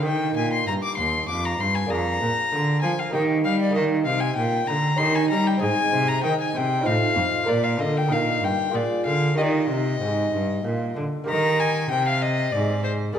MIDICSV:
0, 0, Header, 1, 4, 480
1, 0, Start_track
1, 0, Tempo, 619835
1, 35, Time_signature, 3, 2, 24, 8
1, 5795, Tempo, 631579
1, 10129, End_track
2, 0, Start_track
2, 0, Title_t, "Violin"
2, 0, Program_c, 0, 40
2, 39, Note_on_c, 0, 79, 67
2, 273, Note_off_c, 0, 79, 0
2, 283, Note_on_c, 0, 80, 60
2, 397, Note_off_c, 0, 80, 0
2, 410, Note_on_c, 0, 84, 70
2, 517, Note_off_c, 0, 84, 0
2, 522, Note_on_c, 0, 82, 70
2, 569, Note_off_c, 0, 82, 0
2, 644, Note_on_c, 0, 86, 67
2, 749, Note_off_c, 0, 86, 0
2, 753, Note_on_c, 0, 84, 69
2, 990, Note_off_c, 0, 84, 0
2, 998, Note_on_c, 0, 86, 72
2, 1128, Note_on_c, 0, 82, 63
2, 1139, Note_off_c, 0, 86, 0
2, 1243, Note_on_c, 0, 84, 73
2, 1255, Note_off_c, 0, 82, 0
2, 1357, Note_on_c, 0, 80, 62
2, 1368, Note_off_c, 0, 84, 0
2, 1477, Note_on_c, 0, 82, 80
2, 1489, Note_off_c, 0, 80, 0
2, 2178, Note_off_c, 0, 82, 0
2, 2183, Note_on_c, 0, 80, 68
2, 2316, Note_on_c, 0, 77, 63
2, 2328, Note_off_c, 0, 80, 0
2, 2428, Note_off_c, 0, 77, 0
2, 2432, Note_on_c, 0, 79, 67
2, 2494, Note_off_c, 0, 79, 0
2, 2669, Note_on_c, 0, 77, 68
2, 2788, Note_off_c, 0, 77, 0
2, 2804, Note_on_c, 0, 74, 57
2, 2905, Note_off_c, 0, 74, 0
2, 2909, Note_on_c, 0, 75, 68
2, 2971, Note_off_c, 0, 75, 0
2, 3137, Note_on_c, 0, 77, 67
2, 3257, Note_on_c, 0, 80, 74
2, 3268, Note_off_c, 0, 77, 0
2, 3371, Note_off_c, 0, 80, 0
2, 3376, Note_on_c, 0, 79, 73
2, 3620, Note_on_c, 0, 82, 74
2, 3632, Note_off_c, 0, 79, 0
2, 3856, Note_on_c, 0, 84, 76
2, 3867, Note_off_c, 0, 82, 0
2, 3992, Note_on_c, 0, 80, 68
2, 4004, Note_off_c, 0, 84, 0
2, 4102, Note_off_c, 0, 80, 0
2, 4107, Note_on_c, 0, 82, 78
2, 4238, Note_on_c, 0, 79, 65
2, 4249, Note_off_c, 0, 82, 0
2, 4346, Note_off_c, 0, 79, 0
2, 4351, Note_on_c, 0, 80, 80
2, 4711, Note_on_c, 0, 82, 80
2, 4722, Note_off_c, 0, 80, 0
2, 4824, Note_off_c, 0, 82, 0
2, 4829, Note_on_c, 0, 79, 72
2, 4946, Note_off_c, 0, 79, 0
2, 4963, Note_on_c, 0, 80, 67
2, 5082, Note_on_c, 0, 79, 77
2, 5093, Note_off_c, 0, 80, 0
2, 5314, Note_on_c, 0, 77, 80
2, 5326, Note_off_c, 0, 79, 0
2, 5799, Note_on_c, 0, 74, 80
2, 5810, Note_off_c, 0, 77, 0
2, 5916, Note_on_c, 0, 77, 66
2, 5927, Note_off_c, 0, 74, 0
2, 6037, Note_on_c, 0, 75, 68
2, 6048, Note_off_c, 0, 77, 0
2, 6167, Note_on_c, 0, 79, 71
2, 6178, Note_off_c, 0, 75, 0
2, 6282, Note_on_c, 0, 77, 71
2, 6293, Note_off_c, 0, 79, 0
2, 6523, Note_on_c, 0, 79, 68
2, 6535, Note_off_c, 0, 77, 0
2, 6764, Note_on_c, 0, 74, 65
2, 6775, Note_off_c, 0, 79, 0
2, 6989, Note_off_c, 0, 74, 0
2, 6993, Note_on_c, 0, 77, 68
2, 7229, Note_off_c, 0, 77, 0
2, 7232, Note_on_c, 0, 75, 65
2, 7280, Note_on_c, 0, 74, 53
2, 7292, Note_off_c, 0, 75, 0
2, 7335, Note_on_c, 0, 75, 67
2, 7346, Note_off_c, 0, 74, 0
2, 8440, Note_off_c, 0, 75, 0
2, 8687, Note_on_c, 0, 82, 80
2, 8924, Note_on_c, 0, 80, 76
2, 8935, Note_off_c, 0, 82, 0
2, 9154, Note_off_c, 0, 80, 0
2, 9158, Note_on_c, 0, 79, 78
2, 9278, Note_off_c, 0, 79, 0
2, 9288, Note_on_c, 0, 77, 71
2, 9399, Note_on_c, 0, 75, 75
2, 9410, Note_off_c, 0, 77, 0
2, 9625, Note_on_c, 0, 74, 70
2, 9637, Note_off_c, 0, 75, 0
2, 9862, Note_off_c, 0, 74, 0
2, 9866, Note_on_c, 0, 72, 65
2, 9927, Note_off_c, 0, 72, 0
2, 10102, Note_on_c, 0, 74, 73
2, 10129, Note_off_c, 0, 74, 0
2, 10129, End_track
3, 0, Start_track
3, 0, Title_t, "Lute"
3, 0, Program_c, 1, 24
3, 0, Note_on_c, 1, 58, 36
3, 9, Note_on_c, 1, 63, 37
3, 20, Note_on_c, 1, 67, 38
3, 32, Note_on_c, 1, 51, 39
3, 250, Note_off_c, 1, 51, 0
3, 283, Note_on_c, 1, 46, 39
3, 496, Note_off_c, 1, 46, 0
3, 521, Note_on_c, 1, 43, 40
3, 735, Note_off_c, 1, 43, 0
3, 753, Note_on_c, 1, 39, 40
3, 948, Note_off_c, 1, 58, 0
3, 970, Note_off_c, 1, 39, 0
3, 999, Note_on_c, 1, 41, 43
3, 1213, Note_off_c, 1, 41, 0
3, 1239, Note_on_c, 1, 43, 43
3, 1432, Note_off_c, 1, 63, 0
3, 1437, Note_off_c, 1, 67, 0
3, 1440, Note_on_c, 1, 58, 40
3, 1453, Note_off_c, 1, 43, 0
3, 1455, Note_on_c, 1, 62, 36
3, 1465, Note_on_c, 1, 68, 37
3, 1477, Note_on_c, 1, 41, 41
3, 1692, Note_off_c, 1, 41, 0
3, 1717, Note_on_c, 1, 46, 43
3, 1932, Note_off_c, 1, 46, 0
3, 1950, Note_on_c, 1, 50, 43
3, 2167, Note_off_c, 1, 50, 0
3, 2188, Note_on_c, 1, 53, 39
3, 2385, Note_off_c, 1, 58, 0
3, 2393, Note_off_c, 1, 62, 0
3, 2396, Note_on_c, 1, 58, 41
3, 2398, Note_off_c, 1, 68, 0
3, 2405, Note_off_c, 1, 53, 0
3, 2406, Note_on_c, 1, 63, 37
3, 2419, Note_on_c, 1, 67, 41
3, 2430, Note_on_c, 1, 51, 46
3, 2646, Note_off_c, 1, 51, 0
3, 2667, Note_on_c, 1, 55, 44
3, 2863, Note_off_c, 1, 58, 0
3, 2872, Note_off_c, 1, 63, 0
3, 2872, Note_on_c, 1, 58, 41
3, 2882, Note_on_c, 1, 63, 44
3, 2884, Note_off_c, 1, 67, 0
3, 2885, Note_off_c, 1, 55, 0
3, 2894, Note_on_c, 1, 67, 38
3, 2906, Note_on_c, 1, 51, 47
3, 3125, Note_off_c, 1, 51, 0
3, 3125, Note_off_c, 1, 58, 0
3, 3147, Note_on_c, 1, 48, 43
3, 3366, Note_off_c, 1, 48, 0
3, 3394, Note_on_c, 1, 46, 42
3, 3609, Note_off_c, 1, 46, 0
3, 3631, Note_on_c, 1, 50, 49
3, 3827, Note_off_c, 1, 63, 0
3, 3833, Note_off_c, 1, 67, 0
3, 3842, Note_on_c, 1, 61, 41
3, 3847, Note_off_c, 1, 50, 0
3, 3853, Note_on_c, 1, 63, 45
3, 3864, Note_on_c, 1, 67, 45
3, 3875, Note_on_c, 1, 51, 43
3, 4089, Note_off_c, 1, 51, 0
3, 4116, Note_on_c, 1, 55, 47
3, 4313, Note_off_c, 1, 61, 0
3, 4316, Note_on_c, 1, 60, 46
3, 4319, Note_off_c, 1, 63, 0
3, 4328, Note_on_c, 1, 63, 42
3, 4330, Note_off_c, 1, 55, 0
3, 4333, Note_off_c, 1, 67, 0
3, 4339, Note_on_c, 1, 68, 43
3, 4351, Note_on_c, 1, 44, 48
3, 4566, Note_off_c, 1, 44, 0
3, 4590, Note_on_c, 1, 48, 44
3, 4805, Note_off_c, 1, 48, 0
3, 4826, Note_on_c, 1, 51, 47
3, 5043, Note_off_c, 1, 51, 0
3, 5071, Note_on_c, 1, 48, 46
3, 5262, Note_off_c, 1, 60, 0
3, 5265, Note_off_c, 1, 63, 0
3, 5274, Note_off_c, 1, 68, 0
3, 5274, Note_on_c, 1, 63, 45
3, 5286, Note_off_c, 1, 48, 0
3, 5287, Note_on_c, 1, 65, 44
3, 5296, Note_on_c, 1, 72, 46
3, 5308, Note_on_c, 1, 45, 48
3, 5526, Note_off_c, 1, 45, 0
3, 5548, Note_on_c, 1, 41, 47
3, 5753, Note_off_c, 1, 63, 0
3, 5756, Note_on_c, 1, 58, 46
3, 5761, Note_off_c, 1, 65, 0
3, 5767, Note_off_c, 1, 41, 0
3, 5770, Note_on_c, 1, 65, 42
3, 5771, Note_off_c, 1, 72, 0
3, 5777, Note_on_c, 1, 70, 47
3, 5790, Note_on_c, 1, 46, 45
3, 6006, Note_off_c, 1, 46, 0
3, 6027, Note_on_c, 1, 50, 47
3, 6223, Note_off_c, 1, 58, 0
3, 6233, Note_on_c, 1, 58, 39
3, 6243, Note_off_c, 1, 65, 0
3, 6244, Note_off_c, 1, 50, 0
3, 6246, Note_on_c, 1, 63, 41
3, 6248, Note_off_c, 1, 70, 0
3, 6259, Note_on_c, 1, 70, 39
3, 6268, Note_on_c, 1, 46, 46
3, 6485, Note_off_c, 1, 46, 0
3, 6503, Note_on_c, 1, 43, 46
3, 6712, Note_off_c, 1, 58, 0
3, 6721, Note_on_c, 1, 58, 40
3, 6722, Note_off_c, 1, 43, 0
3, 6724, Note_off_c, 1, 63, 0
3, 6729, Note_on_c, 1, 65, 42
3, 6730, Note_off_c, 1, 70, 0
3, 6742, Note_on_c, 1, 68, 41
3, 6752, Note_on_c, 1, 46, 46
3, 6968, Note_off_c, 1, 46, 0
3, 6992, Note_on_c, 1, 50, 43
3, 7193, Note_off_c, 1, 58, 0
3, 7202, Note_on_c, 1, 58, 39
3, 7207, Note_off_c, 1, 65, 0
3, 7209, Note_off_c, 1, 50, 0
3, 7214, Note_off_c, 1, 68, 0
3, 7216, Note_on_c, 1, 63, 39
3, 7230, Note_on_c, 1, 67, 39
3, 7238, Note_on_c, 1, 51, 45
3, 7452, Note_off_c, 1, 58, 0
3, 7453, Note_off_c, 1, 51, 0
3, 7481, Note_on_c, 1, 48, 43
3, 7696, Note_off_c, 1, 48, 0
3, 7715, Note_on_c, 1, 44, 45
3, 7933, Note_off_c, 1, 44, 0
3, 7954, Note_on_c, 1, 43, 42
3, 8173, Note_off_c, 1, 43, 0
3, 8196, Note_on_c, 1, 46, 43
3, 8416, Note_off_c, 1, 46, 0
3, 8440, Note_on_c, 1, 50, 44
3, 8647, Note_off_c, 1, 63, 0
3, 8648, Note_on_c, 1, 58, 43
3, 8651, Note_off_c, 1, 67, 0
3, 8659, Note_off_c, 1, 50, 0
3, 8660, Note_on_c, 1, 67, 44
3, 8673, Note_on_c, 1, 70, 39
3, 8687, Note_on_c, 1, 51, 50
3, 9131, Note_off_c, 1, 58, 0
3, 9135, Note_off_c, 1, 51, 0
3, 9157, Note_on_c, 1, 48, 45
3, 9606, Note_off_c, 1, 48, 0
3, 9642, Note_on_c, 1, 44, 50
3, 10070, Note_off_c, 1, 67, 0
3, 10077, Note_off_c, 1, 70, 0
3, 10084, Note_off_c, 1, 44, 0
3, 10086, Note_on_c, 1, 58, 43
3, 10100, Note_on_c, 1, 68, 43
3, 10129, Note_off_c, 1, 58, 0
3, 10129, Note_off_c, 1, 68, 0
3, 10129, End_track
4, 0, Start_track
4, 0, Title_t, "Cello"
4, 0, Program_c, 2, 42
4, 36, Note_on_c, 2, 51, 56
4, 272, Note_off_c, 2, 51, 0
4, 276, Note_on_c, 2, 46, 53
4, 512, Note_off_c, 2, 46, 0
4, 515, Note_on_c, 2, 43, 53
4, 577, Note_off_c, 2, 43, 0
4, 755, Note_on_c, 2, 39, 45
4, 986, Note_off_c, 2, 39, 0
4, 991, Note_on_c, 2, 41, 52
4, 1228, Note_off_c, 2, 41, 0
4, 1234, Note_on_c, 2, 43, 54
4, 1470, Note_off_c, 2, 43, 0
4, 1475, Note_on_c, 2, 41, 58
4, 1710, Note_off_c, 2, 41, 0
4, 1714, Note_on_c, 2, 46, 57
4, 1776, Note_off_c, 2, 46, 0
4, 1957, Note_on_c, 2, 50, 58
4, 2188, Note_off_c, 2, 50, 0
4, 2193, Note_on_c, 2, 53, 54
4, 2255, Note_off_c, 2, 53, 0
4, 2430, Note_on_c, 2, 51, 57
4, 2666, Note_off_c, 2, 51, 0
4, 2672, Note_on_c, 2, 55, 56
4, 2910, Note_on_c, 2, 51, 58
4, 2922, Note_off_c, 2, 55, 0
4, 3141, Note_off_c, 2, 51, 0
4, 3145, Note_on_c, 2, 48, 55
4, 3381, Note_off_c, 2, 48, 0
4, 3385, Note_on_c, 2, 46, 61
4, 3619, Note_off_c, 2, 46, 0
4, 3623, Note_on_c, 2, 50, 55
4, 3859, Note_off_c, 2, 50, 0
4, 3864, Note_on_c, 2, 51, 60
4, 4102, Note_off_c, 2, 51, 0
4, 4109, Note_on_c, 2, 55, 56
4, 4345, Note_off_c, 2, 55, 0
4, 4349, Note_on_c, 2, 44, 60
4, 4411, Note_off_c, 2, 44, 0
4, 4588, Note_on_c, 2, 48, 64
4, 4823, Note_off_c, 2, 48, 0
4, 4826, Note_on_c, 2, 51, 59
4, 4888, Note_off_c, 2, 51, 0
4, 5068, Note_on_c, 2, 48, 55
4, 5304, Note_off_c, 2, 48, 0
4, 5312, Note_on_c, 2, 45, 60
4, 5373, Note_off_c, 2, 45, 0
4, 5546, Note_on_c, 2, 41, 62
4, 5608, Note_off_c, 2, 41, 0
4, 5797, Note_on_c, 2, 46, 64
4, 6034, Note_on_c, 2, 50, 58
4, 6046, Note_off_c, 2, 46, 0
4, 6270, Note_on_c, 2, 46, 59
4, 6281, Note_off_c, 2, 50, 0
4, 6504, Note_off_c, 2, 46, 0
4, 6508, Note_on_c, 2, 43, 50
4, 6569, Note_off_c, 2, 43, 0
4, 6752, Note_on_c, 2, 46, 57
4, 6812, Note_off_c, 2, 46, 0
4, 6995, Note_on_c, 2, 50, 54
4, 7227, Note_off_c, 2, 50, 0
4, 7232, Note_on_c, 2, 51, 57
4, 7469, Note_off_c, 2, 51, 0
4, 7478, Note_on_c, 2, 48, 55
4, 7713, Note_off_c, 2, 48, 0
4, 7720, Note_on_c, 2, 44, 57
4, 7955, Note_off_c, 2, 44, 0
4, 7963, Note_on_c, 2, 43, 52
4, 8194, Note_off_c, 2, 43, 0
4, 8198, Note_on_c, 2, 46, 53
4, 8433, Note_off_c, 2, 46, 0
4, 8438, Note_on_c, 2, 50, 51
4, 8499, Note_off_c, 2, 50, 0
4, 8683, Note_on_c, 2, 51, 66
4, 9133, Note_off_c, 2, 51, 0
4, 9165, Note_on_c, 2, 48, 64
4, 9630, Note_off_c, 2, 48, 0
4, 9642, Note_on_c, 2, 44, 63
4, 10105, Note_off_c, 2, 44, 0
4, 10129, End_track
0, 0, End_of_file